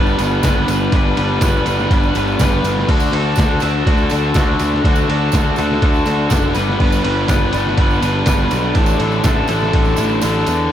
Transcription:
Already playing: picked electric bass G1, overdriven electric guitar G3 B3 D4 B4
0.07 tambourine
0.18 picked electric bass G1, overdriven electric guitar B3 D4 B4, ride, tambourine
0.43 picked electric bass G1, overdriven electric guitar G3 B3 D4 B4, kick, snare, ride, tambourine
0.68 picked electric bass G1, ride, tambourine
0.92 picked electric bass G1, overdriven electric guitar G3 B3 D4 B4, kick, ride, tambourine
1.17 picked electric bass G1, overdriven electric guitar B3 D4 B4, ride, tambourine
1.41 picked electric bass G1, overdriven electric guitar G3 B3 D4 B4, kick, snare, ride, tambourine
1.66 picked electric bass G1, overdriven electric guitar B3 D4 B4, ride, tambourine
1.79 snare, tambourine
1.90 picked electric bass G1, overdriven electric guitar G3 B3 D4 B4, kick, ride, tambourine
2.03 tambourine
2.15 picked electric bass G1, overdriven electric guitar B3 D4 B4, ride, tambourine
2.28 tambourine
2.39 picked electric bass G1, overdriven electric guitar G3 B3 D4, kick, snare, ride, tambourine
2.44 overdriven electric guitar B4
2.64 picked electric bass G1, ride, tambourine
2.78 snare
2.88 picked electric bass D2, overdriven electric guitar D3 D4 F#4 A4, kick, crash
3.00 tambourine
3.13 picked electric bass D2, overdriven electric guitar D4 F#4 A4, ride
3.36 picked electric bass D2, overdriven electric guitar D3 D4, kick, snare, ride, tambourine
3.40 overdriven electric guitar F#4 A4
3.60 picked electric bass D2, overdriven electric guitar F#4 A4, ride, tambourine
3.65 overdriven electric guitar D4
3.86 picked electric bass D2, overdriven electric guitar D3 D4 F#4 A4, kick, ride
3.98 tambourine
4.10 picked electric bass D2, overdriven electric guitar F#4 A4, ride, tambourine
4.14 overdriven electric guitar D4
4.34 picked electric bass D2, overdriven electric guitar D3 D4 F#4 A4, kick, snare, ride, tambourine
4.59 picked electric bass D2, ride, tambourine
4.74 snare
4.84 picked electric bass D2, overdriven electric guitar D3 D4 F#4 A4, kick, ride
4.96 tambourine
5.09 picked electric bass D2, overdriven electric guitar D4 F#4 A4, ride
5.32 picked electric bass D2, overdriven electric guitar D3 D4 F#4, kick, snare, ride, tambourine
5.36 overdriven electric guitar A4
5.56 picked electric bass D2, overdriven electric guitar D4 F#4 A4, ride, tambourine
5.71 snare
5.82 picked electric bass D2, overdriven electric guitar D3 D4 F#4 A4, kick, ride
5.94 tambourine
6.05 picked electric bass D2, overdriven electric guitar D4 F#4 A4, ride, tambourine
6.30 picked electric bass F#1, overdriven electric guitar D3 D4 F#4 A4, kick, snare, ride, tambourine
6.54 picked electric bass G1, overdriven electric guitar G3 B3 D4 B4, ride, tambourine
6.69 snare
6.78 picked electric bass G1, overdriven electric guitar G3 B3 D4 B4, kick, crash
6.92 tambourine
7.04 picked electric bass G1, overdriven electric guitar B3 D4 B4, ride
7.28 picked electric bass G1, overdriven electric guitar G3 B3 D4 B4, kick, snare, ride, tambourine
7.52 picked electric bass G1, overdriven electric guitar B3 D4 B4, ride, tambourine
7.67 snare
7.77 picked electric bass G1, overdriven electric guitar G3 B3 D4 B4, kick, ride
7.90 tambourine
8.01 picked electric bass G1, overdriven electric guitar B3 D4 B4, ride, tambourine
8.26 picked electric bass G1, overdriven electric guitar G3 B3 D4 B4, kick, snare, ride, tambourine
8.51 picked electric bass B1, ride, tambourine
8.73 picked electric bass A1, overdriven electric guitar A2 D3 D4 E4 A4, kick, ride, tambourine
8.86 tambourine
8.99 picked electric bass A1, overdriven electric guitar D4 E4 A4, ride, tambourine
9.12 tambourine
9.24 picked electric bass A1, overdriven electric guitar D3 D4 E4 A4, kick, snare, ride, tambourine
9.48 picked electric bass A1, overdriven electric guitar E4 A4, ride, tambourine
9.52 overdriven electric guitar D4
9.62 snare
9.73 picked electric bass A1, overdriven electric guitar A2 D3 D4 E4 A4, kick, ride
9.85 tambourine
9.96 picked electric bass A1, overdriven electric guitar D4 E4 A4, ride, tambourine
10.09 tambourine
10.21 picked electric bass A1, overdriven electric guitar D3 D4 E4 A4, ride, tambourine
10.34 tambourine
10.46 picked electric bass E2, ride, tambourine

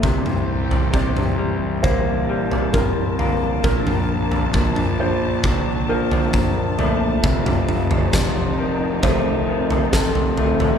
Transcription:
Already playing: string section A#2, felt piano D5
0.03 fingered electric bass C2, clean electric guitar C3, string section E3 C4 G4, kick, floor tom
0.26 mid tom
0.71 floor tom
0.93 clean electric guitar C3, felt piano D5, kick, floor tom
1.17 mid tom
1.38 clean electric guitar G3
1.83 clean electric guitar A#3, felt piano C5, string section A5, kick, floor tom
2.29 clean electric guitar G3
2.51 floor tom
2.73 clean electric guitar C3, felt piano A#4, kick, mid tom
3.19 clean electric guitar A#3, floor tom
3.62 fingered electric bass A#1, clean electric guitar A#2, string section F3 D4, felt piano A#4, kick, floor tom
3.87 mid tom
4.32 floor tom
4.54 clean electric guitar A#2, kick, floor tom
4.76 mid tom
5.00 clean electric guitar F3, felt piano C5
5.43 kick, floor tom
5.89 clean electric guitar F3, felt piano A#4
6.11 floor tom
6.33 clean electric guitar A#2, kick, mid tom
6.78 clean electric guitar A3, felt piano D5, floor tom
7.22 fingered electric bass F1, clean electric guitar F2, string section C4 D#4, kick, floor tom
7.46 floor tom, mid tom
7.69 mid tom
7.91 floor tom
8.13 clean electric guitar C3, felt piano D5, kick, snare, floor tom
8.58 clean electric guitar D#3
9.03 clean electric guitar A3, felt piano C5, kick, floor tom
9.49 clean electric guitar D#3
9.70 floor tom
9.93 clean electric guitar C3, felt piano A4, kick, snare
10.15 floor tom
10.37 clean electric guitar A3, floor tom
10.60 floor tom

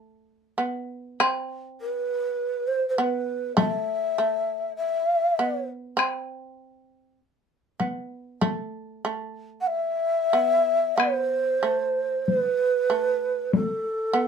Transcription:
Already playing: shamisen A3
0.58 shamisen B3
1.20 shamisen C4, taiko rim
1.81 shakuhachi B4
2.67 shakuhachi C5
2.89 shakuhachi C5
2.96 shamisen B3, shakuhachi B4
3.57 shamisen A3, shakuhachi E5, taiko high
4.18 shamisen A3
4.77 shakuhachi E5
5.39 shamisen B3
5.97 shamisen C4, taiko rim
7.80 shamisen B3, taiko high
8.41 shamisen A3, taiko high
9.05 shamisen A3
9.61 shakuhachi F#5
9.67 shakuhachi E5
10.33 shamisen B3
10.97 shamisen B3, shakuhachi C5, taiko rim
11.63 shamisen A3
12.26 shakuhachi C5, taiko high
12.37 shakuhachi B4
12.90 shamisen A3
13.53 shakuhachi A4, taiko high
14.13 shamisen B3

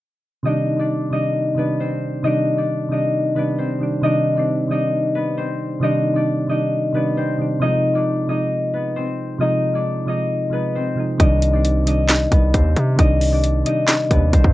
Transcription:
0.43 synth keys C3 D#3 G3, harp D#4 D#5
0.47 synth keys D4
0.77 synth keys C3 D#3 G3, harp D4 D5
0.81 synth keys D4
1.10 synth keys C3 D#3 G3, harp D#4 D#5
1.14 synth keys D4
1.55 synth keys C3 D#3 G3, harp B3 B4
1.59 synth keys D4
1.80 harp C4 C5
2.23 synth keys C3 D#3 G3, harp D#4 D#5
2.27 synth keys D4
2.56 synth keys C3 D#3 G3, harp D4 D5
2.60 synth keys D4
2.89 synth keys C3 D#3 G3, harp D#5
2.93 synth keys D4, harp D#4
3.35 synth keys C3 D#3 G3, harp B3 B4
3.39 synth keys D4
3.58 harp C4 C5
3.79 synth keys C3 D#3 G3
3.83 synth keys D4
4.02 synth keys C3 D#3 G3, harp D#4 D#5
4.06 synth keys D4
4.35 synth keys C3 D#3 G3, harp D4 D5
4.39 synth keys C4
4.68 synth keys C3 D#3 G3, harp D#4 D#5
4.72 synth keys D4
5.15 harp B3 B4
5.37 harp C4 C5
5.80 synth keys C3 D#3 G3, harp D#4 D#5
5.84 synth keys D4
6.14 synth keys C3 D#3 G3, harp D4 D5
6.18 synth keys D4
6.48 synth keys C3 D#3 G3, harp D#4 D#5
6.52 synth keys D4
6.93 synth keys C3 D#3 G3, harp B3 B4
6.97 synth keys D4
7.17 harp C4 C5
7.37 synth keys C3 D#3 G3
7.42 synth keys D4
7.60 synth keys C3 F3 G#3, harp D#4 D#5
7.64 synth keys D#4
7.94 synth keys C3 F3 G#3, harp D4 D5
7.98 synth keys D#4
8.27 synth keys C3 F3 G#3, harp D#4 D#5
8.32 synth keys D#4
8.74 harp B3 B4
8.96 harp C4 C5
9.38 synth keys C3 F3 G#3, harp D#4 D#5
9.43 synth keys D#4
9.72 synth keys C3 F3 G#3, harp D4 D5
9.77 synth keys D#4
10.06 synth keys C3 F3 G#3, harp D#4 D#5
10.10 synth keys D#4
10.50 synth keys C3 F3 G#3, harp B3 B4
10.54 synth keys D#4
10.75 harp C4 C5
10.96 synth keys C3 F3 G#3
11.00 synth keys D#4
11.18 808-style bass C2, synth keys C3 D#3 G3, harp D#4 D#5, kick, closed hi-hat
11.22 synth keys D4
11.42 closed hi-hat
11.52 synth keys C3 D#3 G3, harp D4 D5
11.56 synth keys C4
11.65 closed hi-hat
11.84 synth keys C3 D#3 G3, harp D#4 D#5, closed hi-hat
11.88 synth keys D4
12.09 snare, clap, closed hi-hat
12.32 808-style bass C2, harp B3 B4, kick, closed hi-hat
12.54 808-style bass D#2, harp C4 C5, kick, closed hi-hat
12.76 808-style bass C3, closed hi-hat
12.96 808-style bass C2, synth keys C3 D#3 G3, harp D#4 D#5, kick, closed hi-hat
13.00 synth keys D4
13.21 open hi-hat
13.30 synth keys C3 D#3 G3, harp D4 D5
13.35 synth keys D4
13.44 closed hi-hat
13.64 synth keys C3 D#3 G3, harp D#4 D#5, closed hi-hat
13.68 synth keys D4
13.88 snare, clap, closed hi-hat
14.09 808-style bass D#2, synth keys C3 D#3 G3, harp B3 B4, kick, closed hi-hat
14.13 synth keys D4
14.33 808-style bass C2, harp C4 C5, kick, closed hi-hat
14.44 808-style bass G2, kick

